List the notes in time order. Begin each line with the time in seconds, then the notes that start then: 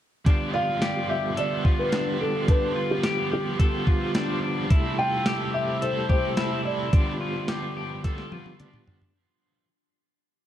0.25 G2 D3 F3 G3 B3 D4 F4 G4, kick, closed hi-hat
0.29 F4 G4
0.54 F4 D5 F5
0.82 G4, snare, closed hi-hat
1.09 G4 E5
1.36 F3 B3 F4 G4 A4 D5, closed hi-hat
1.65 F4, kick
1.79 B4
1.92 F3 B3 D4 F4 G4, snare, closed hi-hat
2.20 D4 A4
2.48 G2 D3 F3 B3 D4 F4 G4 B4, kick, closed hi-hat
2.76 F3 B3 F4 G4
2.91 G4
3.03 G4, snare, closed hi-hat
3.31 G4
3.59 F3 B3 F4 G4 A4, kick, closed hi-hat
3.87 F4, kick
4.14 F3 B3 D4 F4 G4, snare, closed hi-hat
4.42 D4
4.70 C3 G3 A3 C4 E4 A4, kick, closed hi-hat
4.98 C4 F4 A4 G5
5.26 G4, snare, closed hi-hat
5.54 G4 E5
5.81 G3 C4 E4 A4 C5, closed hi-hat
6.09 G4 C5, kick
6.37 G3 C4 E4 A4, snare, closed hi-hat
6.65 E4 D5
6.92 G2 D3 F3 G3 B3 D4 F4 G4, kick, closed hi-hat
6.96 F4 G4
7.21 F4
7.48 G4, snare, closed hi-hat
7.77 G4
8.03 F3 B3 F4 G4 A4, kick, snare, closed hi-hat
8.18 snare
8.32 F4, high tom
8.46 high tom
8.59 F3 B3 D4 F4 G4, closed hi-hat, mid tom
8.74 mid tom
8.87 D4, floor tom
9.02 floor tom